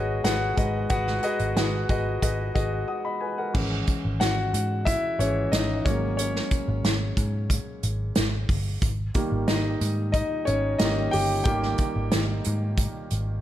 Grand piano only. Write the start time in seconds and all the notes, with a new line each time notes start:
Already playing: F#4 G#4 B4 C#5 D#5
0.24 F#4 G#4 B4 F#5
0.57 G#2 F#4 G#4 B4 D#5
0.90 F#4 G#4 B4 F#5
1.23 F#4 G#4 B4 D#5
1.57 F#4 G#4 B4 F#5
1.89 F#4 G#4 B4 D#5
2.22 F#4 G#4 B4 D#5
2.55 F#4 G#4 B4 D#5
2.88 F#5 D#6
3.05 D#5 B5
3.21 B4 G#5
3.38 A#4 F#5
3.53 E3 G#3 C#4
4.20 F#4 F#5
4.85 E4 E5
5.19 E3 G#3 C#4 C#5
5.52 D#4 D#5
5.85 F#3 G#3 A#3 C#4 C#5
6.17 C#4 C#5
9.14 D#3 G3 A#3
9.48 D#4 D#5
10.12 D#4 D#5
10.45 C#4 C#5
10.79 D#3 G3 A#3 D#4 D#5
11.11 G4 G5
11.44 D#3 G3 A#3 G4 G5